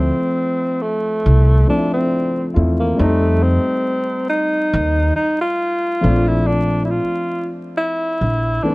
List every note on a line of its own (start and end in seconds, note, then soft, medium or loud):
0.00 1.01 F3 medium
0.00 1.02 A3 medium
0.00 0.84 C4 medium
0.00 1.03 C4 medium
0.00 1.03 E4 medium
0.82 1.68 A3 medium
1.26 1.62 C2 loud
1.67 2.43 F3 medium
1.67 2.44 A3 medium
1.67 2.45 C4 medium
1.67 1.91 D4 medium
1.67 1.76 D4 medium
1.77 2.48 E4 medium
1.94 2.47 C4 medium
2.54 2.93 E2 medium
2.54 2.93 A3 medium
2.54 2.94 C4 medium
2.54 2.94 E4 medium
2.54 2.92 F4 medium
2.80 3.01 A#3 medium
2.96 3.57 F2 loud
2.96 4.49 G3 medium
2.96 4.49 A3 medium
2.96 3.45 A3 medium
2.96 4.50 C4 medium
2.96 4.51 D#4 medium
3.43 4.29 C4 medium
4.29 5.12 D#4 medium
4.73 5.10 D#2 loud
5.16 5.38 D#4 medium
5.41 6.29 F4 medium
6.01 6.98 A#1 loud
6.01 7.53 F3 medium
6.01 7.54 A3 medium
6.01 7.55 C4 medium
6.01 7.55 D4 medium
6.28 6.48 E4 medium
6.47 6.84 D4 loud
6.85 6.92 E4 medium
6.91 7.52 F4 medium
7.77 8.65 E4 loud
8.21 8.58 A#1 medium
8.63 8.75 E3 medium
8.63 8.75 A3 medium
8.63 8.75 C4 medium
8.63 8.75 D4 medium